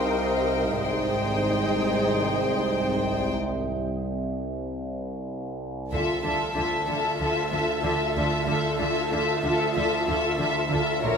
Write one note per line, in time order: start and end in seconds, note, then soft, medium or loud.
0.00 0.78 C2 soft
0.00 0.78 C2 medium
0.00 0.78 C3 soft
0.00 0.78 D#4 soft
0.00 0.78 G4 soft
0.00 0.78 A#4 soft
0.00 0.82 A#4 medium
0.00 0.78 C5 soft
0.00 0.78 D#5 soft
0.00 0.78 F5 soft
0.00 0.78 G5 soft
0.00 0.46 C6 soft
0.00 0.47 D#6 soft
0.82 3.33 G#1 soft
0.82 5.89 C2 medium
0.82 3.33 G#2 soft
0.82 3.33 D#4 soft
0.82 3.37 G#4 soft
0.82 3.33 C5 soft
0.82 3.38 C5 medium
0.82 3.34 D#5 soft
0.82 3.33 G5 soft
0.82 3.34 G5 medium
5.91 10.99 D2 medium
5.91 6.00 D2 soft
5.91 6.01 D3 soft
5.91 6.23 F4 soft
5.91 10.99 F4 soft
5.91 6.23 A4 soft
5.91 10.99 A4 soft
5.91 10.99 E5 soft
5.91 6.23 E5 soft
6.23 6.32 D2 soft
6.23 6.33 D3 soft
6.23 6.56 F4 soft
6.23 6.55 A4 soft
6.23 6.55 E5 soft
6.23 8.11 A5 soft
6.56 6.64 D2 soft
6.56 6.64 D3 soft
6.56 6.87 F4 soft
6.56 6.88 A4 soft
6.56 6.87 E5 soft
6.88 6.96 D2 soft
6.88 6.96 D3 soft
6.88 7.19 F4 soft
6.88 7.19 A4 soft
6.88 7.19 E5 soft
7.20 7.28 D2 soft
7.20 7.28 D3 soft
7.20 7.50 F4 soft
7.20 7.50 A4 soft
7.20 7.52 E5 soft
7.52 7.60 D2 soft
7.52 7.60 D3 soft
7.52 7.82 F4 soft
7.52 7.81 A4 soft
7.52 7.83 E5 soft
7.83 7.91 D2 soft
7.83 7.92 D3 soft
7.83 8.14 F4 soft
7.83 8.14 A4 soft
7.83 8.16 E5 soft
8.15 8.24 D2 soft
8.15 8.24 D3 soft
8.15 8.46 F4 soft
8.15 8.47 A4 soft
8.15 8.47 E5 soft
8.47 8.56 D2 soft
8.47 8.55 D3 soft
8.47 8.78 F4 soft
8.47 8.79 A4 soft
8.47 8.79 E5 soft
8.79 8.88 D2 soft
8.79 8.88 D3 soft
8.79 9.10 F4 soft
8.79 9.11 A4 soft
8.79 9.11 E5 soft
9.11 9.20 D2 soft
9.11 9.20 D3 soft
9.11 9.41 F4 soft
9.11 9.43 A4 soft
9.11 10.99 E5 soft
9.11 9.43 E5 soft
9.43 9.52 D2 soft
9.43 9.51 D3 soft
9.43 9.72 F4 soft
9.43 9.75 A4 soft
9.43 9.75 E5 soft
9.74 9.84 D2 soft
9.74 9.84 D3 soft
9.74 10.05 F4 soft
9.74 10.06 A4 soft
9.74 10.07 E5 soft
10.06 10.16 D2 soft
10.06 10.15 D3 soft
10.06 10.37 F4 soft
10.06 10.38 A4 soft
10.06 10.39 E5 soft
10.38 10.48 D2 soft
10.38 10.47 D3 soft
10.38 10.69 F4 soft
10.38 10.70 A4 soft
10.38 10.71 E5 soft
10.70 10.80 D2 soft
10.70 10.79 D3 soft
10.70 11.01 F4 soft
10.70 11.02 A4 soft
10.70 11.03 E5 soft
11.02 11.17 A#1 medium
11.02 11.11 A#1 soft
11.02 11.11 A#2 soft
11.02 11.17 F4 soft
11.02 11.17 F4 medium
11.02 11.17 A#4 soft
11.02 11.17 A#4 medium
11.02 11.17 C#5 soft
11.02 11.17 C#5 medium
11.02 11.17 A#5 soft